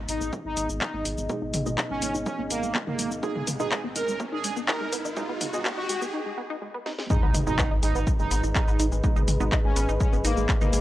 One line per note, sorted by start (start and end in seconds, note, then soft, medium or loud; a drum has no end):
0.00 1.27 B2 medium
0.00 1.27 G#3 medium
0.00 6.09 B3 medium
0.00 1.27 D#4 loud
0.00 6.09 D#4 medium
0.00 6.09 G#4 medium
0.00 6.09 D#5 loud
0.00 riser medium
0.09 0.19 G#1 medium
0.09 0.15 G#3 medium
0.09 0.32 D#4 medium
0.09 open hi-hat loud
0.09 shaker medium
0.21 0.30 G#1 medium
0.21 0.25 B3 loud
0.21 shaker soft
0.33 0.39 D#4 loud
0.33 kick loud
0.33 shaker soft
0.45 0.55 G#1 medium
0.45 0.51 G#3 medium
0.45 0.68 D#4 loud
0.57 0.67 G#1 loud
0.57 0.61 B3 loud
0.57 open hi-hat loud
0.57 shaker medium
0.69 0.79 G#1 medium
0.69 0.76 D#4 medium
0.69 shaker soft
0.81 0.88 G#3 medium
0.81 1.04 D#4 loud
0.81 kick loud
0.81 clap loud
0.81 shaker soft
0.94 1.03 G#1 medium
0.94 0.97 B3 loud
1.05 1.15 G#1 loud
1.05 1.12 D#4 loud
1.05 open hi-hat loud
1.05 shaker medium
1.18 1.27 G#1 loud
1.18 1.24 G#3 medium
1.18 shaker soft
1.29 1.63 B2 medium
1.29 1.63 G#3 medium
1.29 1.33 B3 loud
1.29 1.63 D#4 loud
1.29 kick loud
1.29 shaker soft
1.42 1.51 G#1 medium
1.42 1.48 D#4 loud
1.54 1.64 G#1 medium
1.54 1.60 G#3 medium
1.54 open hi-hat loud
1.54 mid tom medium
1.54 shaker medium
1.66 1.76 G#1 medium
1.66 3.20 B2 medium
1.66 3.20 G#3 medium
1.66 1.70 B3 loud
1.66 3.20 D#4 medium
1.66 shaker soft
1.78 1.85 D#4 loud
1.78 kick loud
1.78 clap loud
1.78 shaker soft
1.90 2.00 G#1 medium
1.90 1.97 G#3 medium
1.90 2.13 C#4 loud
2.02 2.12 G#1 loud
2.02 2.06 B3 loud
2.02 open hi-hat loud
2.02 shaker medium
2.15 2.24 G#1 medium
2.15 2.21 D#4 loud
2.15 shaker soft
2.26 2.33 G#3 medium
2.26 2.42 C#4 medium
2.26 kick loud
2.26 shaker soft
2.39 2.48 G#1 medium
2.39 2.43 B3 loud
2.50 2.61 G#1 loud
2.50 2.74 A#3 loud
2.50 2.57 D#4 loud
2.50 open hi-hat loud
2.50 shaker medium
2.63 2.72 G#1 medium
2.63 2.69 G#3 medium
2.63 shaker soft
2.75 2.79 B3 loud
2.75 kick loud
2.75 clap loud
2.75 shaker soft
2.87 2.97 G#1 medium
2.87 3.10 A#3 medium
2.87 2.93 D#4 loud
2.87 mid tom medium
2.99 3.09 G#1 medium
2.99 3.05 G#3 medium
2.99 open hi-hat loud
2.99 shaker medium
3.11 3.21 G#1 loud
3.11 3.15 B3 loud
3.11 shaker soft
3.23 3.57 B2 medium
3.23 3.57 G#3 medium
3.23 3.30 D#4 loud
3.23 3.57 D#4 medium
3.23 3.46 G#4 loud
3.23 kick loud
3.23 shaker soft
3.36 3.45 G#1 medium
3.36 3.42 G#3 medium
3.36 mid tom medium
3.47 3.57 G#1 medium
3.47 3.51 B3 loud
3.47 open hi-hat loud
3.47 mid tom medium
3.47 shaker medium
3.60 3.69 G#1 medium
3.60 5.14 B2 medium
3.60 5.14 G#3 medium
3.60 3.66 D#4 loud
3.60 5.14 D#4 loud
3.60 3.83 G#4 loud
3.60 shaker soft
3.71 3.78 G#3 medium
3.71 kick loud
3.71 clap loud
3.71 shaker soft
3.84 3.93 G#1 medium
3.84 3.88 B3 loud
3.96 4.06 G#1 medium
3.96 4.02 D#4 loud
3.96 4.19 A#4 loud
3.96 open hi-hat loud
3.96 shaker medium
4.08 4.18 G#1 medium
4.08 4.14 G#3 medium
4.08 shaker soft
4.20 4.24 B3 loud
4.20 kick loud
4.20 shaker soft
4.32 4.42 G#1 medium
4.32 4.39 D#4 loud
4.32 4.55 G#4 medium
4.44 4.54 G#1 loud
4.44 4.51 G#3 medium
4.44 open hi-hat loud
4.44 shaker medium
4.57 4.66 G#1 medium
4.57 4.60 B3 loud
4.57 shaker soft
4.68 4.75 D#4 loud
4.68 4.91 A#4 medium
4.68 kick loud
4.68 clap loud
4.68 shaker soft
4.81 4.90 G#1 medium
4.81 4.87 G#3 medium
4.92 5.03 G#1 loud
4.92 4.96 B3 loud
4.92 open hi-hat loud
4.92 shaker medium
5.05 5.14 G#1 medium
5.05 5.11 D#4 loud
5.05 shaker soft
5.17 5.50 B2 loud
5.17 5.23 G#3 medium
5.17 5.50 G#3 medium
5.17 5.50 D#4 loud
5.17 kick loud
5.17 shaker soft
5.29 5.39 G#1 medium
5.29 5.33 B3 loud
5.41 5.51 G#1 loud
5.41 5.47 D#4 loud
5.41 open hi-hat loud
5.41 mid tom medium
5.41 shaker medium
5.53 5.63 G#1 medium
5.53 6.13 B2 medium
5.53 5.60 G#3 medium
5.53 6.13 G#3 medium
5.53 6.13 D#4 medium
5.53 shaker soft
5.65 5.69 B3 loud
5.65 kick loud
5.65 clap loud
5.65 shaker soft
5.77 5.87 G#1 medium
5.77 5.84 D#4 loud
5.77 6.01 F#4 loud
5.89 5.99 G#1 loud
5.89 5.96 G#3 medium
5.89 open hi-hat loud
5.89 shaker medium
6.02 6.11 G#1 medium
6.02 6.05 B3 loud
6.02 shaker soft
6.13 6.20 D#4 loud
6.26 6.32 G#3 medium
6.38 6.42 B3 loud
6.50 6.56 D#4 loud
6.62 6.68 G#3 medium
6.74 6.78 B3 loud
6.86 6.93 D#4 loud
6.86 snare medium
6.99 7.05 G#3 medium
6.99 snare medium
7.10 7.44 B2 medium
7.10 7.17 G#3 medium
7.10 7.44 G#3 medium
7.10 7.44 D#4 medium
7.10 7.33 D#4 loud
7.10 7.17 G#4 medium
7.10 10.81 G#4 medium
7.10 10.81 B4 medium
7.10 10.81 D#5 medium
7.10 10.81 B5 medium
7.10 kick loud
7.10 impact medium
7.10 shaker soft
7.23 7.32 G#1 medium
7.23 7.26 B3 loud
7.23 7.26 B4 medium
7.23 mid tom medium
7.34 7.44 G#1 medium
7.34 7.41 D#4 loud
7.34 7.41 D#5 medium
7.34 open hi-hat loud
7.34 mid tom loud
7.34 shaker medium
7.47 7.56 G#1 medium
7.47 9.01 B2 medium
7.47 7.53 G#3 medium
7.47 9.01 G#3 medium
7.47 7.70 D#4 loud
7.47 9.01 D#4 loud
7.47 7.53 G#4 medium
7.47 shaker soft
7.58 7.62 B3 loud
7.58 7.63 B4 medium
7.58 kick loud
7.58 clap loud
7.58 shaker soft
7.71 7.81 G#1 medium
7.71 7.77 D#4 medium
7.71 7.77 D#5 medium
7.83 7.93 G#1 medium
7.83 7.89 G#3 medium
7.83 8.06 D#4 loud
7.83 7.89 G#4 medium
7.83 open hi-hat loud
7.83 shaker medium
7.95 8.05 G#1 medium
7.95 7.99 B3 loud
7.95 7.99 B4 medium
7.95 shaker soft
8.07 8.14 D#4 loud
8.07 8.14 D#5 medium
8.07 kick loud
8.07 shaker soft
8.19 8.29 F#1 medium
8.19 8.26 G#3 medium
8.19 8.42 D#4 medium
8.19 8.26 G#4 soft
8.19 shaker soft
8.31 8.41 G#1 loud
8.31 8.35 B3 loud
8.31 8.35 B4 medium
8.31 open hi-hat loud
8.31 shaker medium
8.44 8.53 G#1 medium
8.44 8.50 D#4 loud
8.44 8.50 D#5 medium
8.44 shaker soft
8.55 8.62 G#3 medium
8.55 8.78 D#4 loud
8.55 8.62 G#4 medium
8.55 kick loud
8.55 clap loud
8.55 shaker medium
8.68 8.77 G#1 medium
8.68 8.72 B3 loud
8.68 8.72 B4 medium
8.68 shaker soft
8.79 8.90 G#1 loud
8.79 8.86 D#4 loud
8.79 8.86 D#5 medium
8.79 open hi-hat loud
8.79 shaker medium
8.92 9.01 G#1 loud
8.92 8.98 G#3 medium
8.92 8.98 G#4 medium
8.92 shaker soft
9.04 9.37 B2 medium
9.04 9.37 G#3 medium
9.04 9.08 B3 loud
9.04 9.37 D#4 loud
9.04 9.08 B4 medium
9.04 kick loud
9.04 shaker soft
9.16 9.26 G#1 medium
9.16 9.22 D#4 loud
9.16 9.22 D#5 medium
9.16 mid tom medium
9.16 shaker soft
9.28 9.38 G#1 medium
9.28 9.35 G#3 medium
9.28 9.34 G#4 medium
9.28 open hi-hat loud
9.28 mid tom medium
9.28 shaker medium
9.40 9.50 G#1 medium
9.40 10.81 B2 medium
9.40 10.81 G#3 medium
9.40 9.44 B3 loud
9.40 10.81 D#4 medium
9.40 9.44 B4 medium
9.40 shaker soft
9.52 9.59 D#4 loud
9.52 9.59 D#5 medium
9.52 kick loud
9.52 clap loud
9.52 shaker soft
9.65 9.74 G#1 medium
9.65 9.71 G#3 medium
9.65 9.88 C#4 loud
9.65 9.71 G#4 medium
9.76 9.86 G#1 loud
9.76 9.80 B3 loud
9.76 9.80 B4 medium
9.76 open hi-hat loud
9.76 shaker medium
9.89 9.98 G#1 medium
9.89 9.95 D#4 loud
9.89 9.95 D#5 medium
9.89 shaker soft
10.00 10.07 G#3 medium
10.00 10.16 C#4 medium
10.00 10.07 G#4 medium
10.00 kick loud
10.00 shaker soft
10.13 10.22 F#1 medium
10.13 10.17 B3 medium
10.13 10.17 B4 medium
10.13 shaker soft
10.25 10.35 G#1 loud
10.25 10.48 A#3 loud
10.25 10.31 D#4 loud
10.25 10.31 D#5 medium
10.25 open hi-hat loud
10.25 shaker medium
10.37 10.47 G#1 medium
10.37 10.43 G#3 medium
10.37 10.43 G#4 medium
10.37 shaker soft
10.49 10.53 B3 loud
10.49 10.53 B4 medium
10.49 kick loud
10.49 clap loud
10.49 shaker soft
10.61 10.71 G#1 medium
10.61 10.81 A#3 medium
10.61 10.68 D#4 loud
10.61 10.68 D#5 medium
10.61 mid tom medium
10.61 shaker soft
10.73 10.81 G#1 loud
10.73 10.80 G#3 medium
10.73 10.80 G#4 medium
10.73 open hi-hat loud
10.73 shaker medium